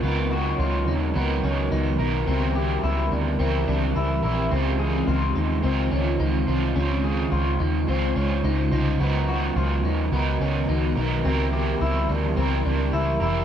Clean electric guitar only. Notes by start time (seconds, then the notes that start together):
0.03 B3
0.31 F#4
0.60 F4
0.88 D#4
1.16 B3
1.44 C#4
1.72 D#4
2.00 D#4
2.27 C4
2.55 G4
2.84 E4
3.12 D4
3.40 C4
3.68 D4
3.96 E4
4.24 E4
4.51 C4
4.79 G#4
5.07 F4
5.35 D#4
5.63 C4
5.91 C#4
6.20 D#4
6.48 D#4
6.76 C#4
7.04 G#4
7.32 F4
7.60 D#4
7.88 C4
8.16 C#4
8.44 D#4
8.72 D#4
9.00 B3
9.28 F#4
9.57 F4
9.85 D#4
10.13 B3
10.41 C#4
10.69 D#4
10.97 D#4
11.25 C4
11.53 G4
11.81 E4
12.09 D4
12.37 C4
12.65 D4
12.93 E4
13.21 E4